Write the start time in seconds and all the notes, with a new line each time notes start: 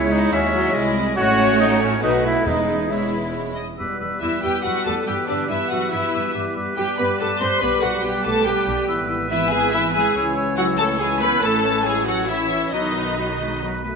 Already playing: C#2 G#3 C#4 E4 C#5 E5
0.12 D#4 E4 D#5
0.33 D#2 G#3 C#4 F#4 C#5 E5
0.54 F#3
0.74 C2 G#3 E4 G#4 D#5
1.17 A1 A2 A3 C#4 F#4 C#5 F#5
1.59 D#4 D#5
1.81 C#4 C#5
2.02 B1 B2 A3 B3 D#4 F#4 B4 D#5
2.24 E4 E5
2.46 E1 E2 G#3 B3 D#4 E4 G#4 B4 D#5
2.90 G#3 B3 E4 C#5 E5
3.12 B4
3.35 C#5
3.56 D#5
3.78 E2 G3 B3 G4 B4 E6
4.00 E2 G4 B4 E6
4.21 E2 E3 G3 B3 E4 G4 B4 E5 E6
4.42 E2 G3 G4 B4 G5 E6
4.63 E2 F#3 F#4 G4 B4 F#5 E6
4.85 E2 A3 G4 A4 B4 A5 E6
5.06 G2 E3 G3 B3 G4 B4 G5 E6
5.28 G2 D3 D4 G4 B4 D5 E6
5.49 G2 E3 B3 E4 G4 B4 E5 E6
5.70 G2 F#3 F#4 G4 B4 F#5 E6
5.91 G2 E3 B3 E4 G4 B4 E5 E6
6.13 G2 G4 B4 E6
6.34 G2 G3 B3 G4 B4 D6
6.56 G2 G4 B4 D6
6.77 G2 G3 B3 G4 B4 G5 D6
6.98 G2 B3 G4 B4 B5 D6
7.19 G2 A3 G4 A4 B4 A5 D6
7.41 G2 C4 G4 B4 C5 C6 D6
7.61 B1 G3 B3 G4 B4 B5 D6
7.82 B1 F#3 F#4 G4 B4 F#5 D6
8.03 B1 G3 B3 G4 B4 G5 D6
8.25 B1 A3 G4 A4 B4 A5 D6
8.45 B1 G3 B3 G4 B4 G5 D6
8.67 B1 G4 B4 D6
8.88 G#1 E3 B3 E4 B4 E6
9.09 E4 B4 E6
9.30 E3 B3 E4 B4 E5 E6
9.50 G#3 E4 G#4 B4 G#5 E6
9.72 E3 B3 E4 B4 E5 E6
9.93 G#3 E4 G#4 B4 G#5 E6
10.15 C#2 E3 C#4 E4 C#5 E6
10.36 E4 C#5 E6
10.57 F#3 E4 F#4 C#5 F#5 E6
10.78 A3 E4 A4 C#5 A5 E6
10.99 E3 G#3 C#4 E4 G#4 C#5 G#5 E6
11.21 B3 E4 B4 C#5 B5 E6
11.43 A1 E3 A3 C#4 E4 A4 C#5 A5 E6
11.65 E4 C#5 E6
11.86 G#3 E4 G#4 C#5 G#5 E6
12.07 F#3 E4 F#4 C#5 F#5 E6
12.29 E3 C#4 E4 C#5 E5 E6
12.51 E4 C#5 E6
12.73 B1 D#3 F#3 B3 D#4 F#4 B4 D#5 B5
12.96 F#4 B4 B5
13.18 F#3 F#4 B4 B5
13.40 G#3 F#4 B4 B5
13.61 F#3 F#4 B4 B5
13.84 A3 F#4 B4 B5